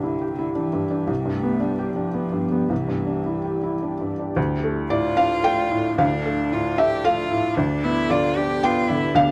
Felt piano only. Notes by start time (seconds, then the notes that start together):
Already playing: C2 G2 D4
0.03 E4
0.21 G4
0.39 E4
0.55 D4
0.73 G2
0.91 D4
1.07 C2
1.25 G2
1.43 B3
1.60 D4
1.78 G4
1.96 D4
2.14 B3
2.32 G2
2.52 B3
2.69 C2
2.88 G2
3.07 D4
3.26 E4
3.44 G4
3.63 E4
3.82 D4
4.01 G2
4.19 D4
4.36 D2
4.64 A3
4.90 A2 D5
5.17 D4 F5
5.44 A3 G5
5.71 A2
5.98 D2 F5
6.25 A3
6.52 A2
6.78 D4 E5
7.05 A3 F5
7.32 A2
7.57 D2
7.84 B3
8.10 D3 D5
8.37 D4
8.63 B3 G5
8.90 D3
9.15 D2 F5